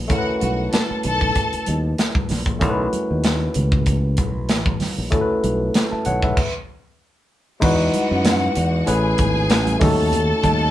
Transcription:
0.08 tine electric piano A3 C#4 E4 F#4, string section F#4 F#5, kick, closed hi-hat, muted conga, low conga
0.12 tine electric piano A#4
0.18 tine electric piano B4
0.41 fingered electric bass B1, string section F#4 F#5, closed hi-hat, muted conga, high conga
0.72 string section A4 A5, snare, closed hi-hat, muted conga, high conga
0.91 muted fingered electric bass stroke
1.03 fingered electric bass B1, string section A4 A5, closed hi-hat, muted conga, low conga
1.21 kick
1.35 kick, closed hi-hat
1.53 muted fingered electric bass stroke, closed hi-hat
1.66 fingered electric bass D#2, closed hi-hat, muted conga, high conga
1.98 snare, closed hi-hat, muted conga, high conga
2.15 kick, high conga
2.29 fingered electric bass A#1, snare, open hi-hat, muted conga, high conga, low conga
2.46 kick, closed hi-hat
2.59 fingered electric bass B1, tine electric piano A3 C#4 E4 F#4, kick, closed hi-hat, low conga
2.63 tine electric piano A#4
2.70 tine electric piano B4
2.93 closed hi-hat, high conga
3.11 fingered electric bass D#2
3.24 snare, closed hi-hat, muted conga, high conga
3.54 fingered electric bass C#2, closed hi-hat, muted conga, low conga
3.72 kick
3.86 kick, closed hi-hat
4.17 fingered electric bass B1, kick, closed hi-hat, high conga
4.49 fingered electric bass A1, snare, closed hi-hat, muted conga, high conga
4.66 kick, high conga
4.80 snare, open hi-hat, muted conga, high conga, low conga
4.98 fingered electric bass A#1
5.10 tine electric piano A3 C#4 E4 F#4 A4, kick, closed hi-hat, muted conga, low conga
5.21 tine electric piano B4
5.44 fingered electric bass B1, closed hi-hat, high conga
5.74 snare, closed hi-hat, muted conga, high conga
5.92 tine electric piano E5 A5, muted fingered electric bass stroke
6.05 fingered electric bass B1, tine electric piano C#5 F#5, closed hi-hat, low conga
6.22 tine electric piano B4 E5, kick
6.37 kick, crash
7.60 fingered electric bass E2, tine electric piano G#3 D#4 E4 F#4, string section F#4 F#5, kick, crash, muted conga, low conga
7.64 tine electric piano B4
7.93 closed hi-hat, high conga
8.11 fingered electric bass F#2
8.25 snare, closed hi-hat, muted conga, high conga
8.56 fingered electric bass E2, closed hi-hat
8.86 fingered electric bass A1, tine electric piano A3 C#4 E4 G#4 B4, string section G#4 G#5, closed hi-hat, muted conga
9.18 fingered electric bass G#1, kick, closed hi-hat, high conga
9.49 fingered electric bass A1, snare, closed hi-hat, muted conga, high conga
9.67 closed hi-hat, high conga
9.79 fingered electric bass D#2, tine electric piano A3 C#4 D#4 F#4 A4, string section A4 A5, kick, snare, open hi-hat, muted conga, high conga, low conga
10.12 closed hi-hat, muted conga, low conga
10.44 fingered electric bass D#2, kick, closed hi-hat, muted conga, high conga

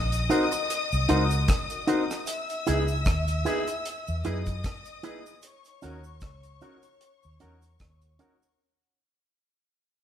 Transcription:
Already playing: fingered electric bass A#1, string section D#5 D#6
0.12 closed hi-hat, cabasa
0.29 grand piano C4 D#4 F#4 A#4, clean electric guitar D#4 F#4 C5, closed hi-hat, cabasa
0.52 muted clean electric guitar stroke, closed hi-hat, cabasa
0.70 closed hi-hat, cabasa
0.92 fingered electric bass C2, cabasa
1.08 fingered electric bass C#2, grand piano C4 D#4 F#4 A#4, clean electric guitar D#4 F#4 C5, closed hi-hat, cabasa
1.31 closed hi-hat, cabasa
1.48 kick, cross-stick, closed hi-hat, cabasa
1.70 grand piano F#4 A#4, closed hi-hat, cabasa
1.87 grand piano C4 D#4 F#4 A#4, clean electric guitar D#4 F#4 C5, closed hi-hat, cabasa
2.11 cross-stick, cabasa
2.27 string section E5 E6, closed hi-hat, cabasa
2.49 closed hi-hat, cabasa
2.67 fingered electric bass C#2, grand piano B3 D#4 E4 G#4, clean electric guitar E4 G#4 B4, closed hi-hat, cabasa
2.88 cabasa
3.05 fingered electric bass D#2, kick, cross-stick, closed hi-hat, cabasa
3.28 closed hi-hat, cabasa
3.45 grand piano B3 D#4 E4 G#4, clean electric guitar E4 G#4 B4, closed hi-hat, cabasa
3.67 muted clean electric guitar stroke, closed hi-hat, cabasa
3.85 closed hi-hat, cabasa
4.07 fingered electric bass E2, cabasa
4.24 fingered electric bass F#2, grand piano B3 D#4 E4 G#4, clean electric guitar E4 G#4 B4, string section D#5 D#6, closed hi-hat, cabasa
4.46 grand piano E4 G#4, kick, closed hi-hat, cabasa
4.64 kick, cross-stick, closed hi-hat, cabasa
4.85 closed hi-hat, cabasa
5.03 grand piano B3 D#4 E4 G#4, clean electric guitar E4 G#4 B4, closed hi-hat, cabasa
5.26 cabasa
5.42 string section C#5 C#6, closed hi-hat, cabasa
5.64 closed hi-hat, cabasa
5.82 fingered electric bass D#2, clean electric guitar C#4 F#4 A#4, grand piano C#4 D#4 F#4 A#4, closed hi-hat, cabasa
6.04 cabasa
6.21 fingered electric bass C#2, kick, cross-stick, closed hi-hat, cabasa
6.43 closed hi-hat, cabasa
6.61 clean electric guitar C#4 F#4 A#4, grand piano C#4 D#4 F#4 A#4, closed hi-hat, cabasa
6.82 muted clean electric guitar stroke, closed hi-hat, cabasa
7.01 closed hi-hat, cabasa
7.23 fingered electric bass D#2, cabasa
7.40 fingered electric bass E2, clean electric guitar C#4 F#4 A#4, grand piano C#4 D#4 F#4 A#4, closed hi-hat, cabasa
7.62 grand piano F#4 A#4, closed hi-hat, cabasa
7.79 fingered electric bass D#2, kick, cross-stick, closed hi-hat, cabasa
8.01 grand piano F#4 A#4, closed hi-hat, cabasa
8.19 clean electric guitar C#4 F#4 A#4, grand piano C#4 D#4 F#4 A#4, closed hi-hat, cabasa
8.42 cabasa

